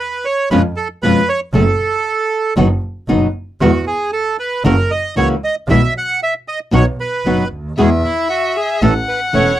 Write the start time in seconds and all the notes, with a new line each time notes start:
0.00 B4
0.25 C#5
0.51 F2 B2 F3 G#3 C#4 F4 B4
0.77 A4
1.03 F2 B2 F3 G#3 C#4 F4 B4
1.29 C#5
1.54 F#1 C#3 F#3 A3 C#4 G#4 A4
2.57 F#1 B2 F#3 B3 D#4 F#4
3.08 F#1 B2 F#3 B3 D#4 F#4
3.61 E2 B2 E3 G#3 B3 F#4
3.87 G#4
4.13 A4
4.39 B4
4.64 F#1 C#3 E3 A#3 C#4 F#4 A#4
4.91 D#5
5.16 C#2 C#3 E3 A#3 C#4 F#4 C#5
5.44 D#5
5.68 B1 B2 E3 G#3 B3 E4 E5
5.98 F#5
6.23 E5
6.48 D#5
6.71 B1 B2 F#3 B3 D#4 F#4 C#5
7.00 B4
7.25 F#1 B2 F#3 B3 D#4 F#4
7.51 D2
7.77 E2 B2 E3 G#3 B3 F#4 G#4 E5
8.04 E4
8.29 F#4
8.56 G#4
8.82 A1 E3 A3 C#4 E4 A4 F#5
9.08 B4
9.33 E1 E3 A3 C#4 E4 C#5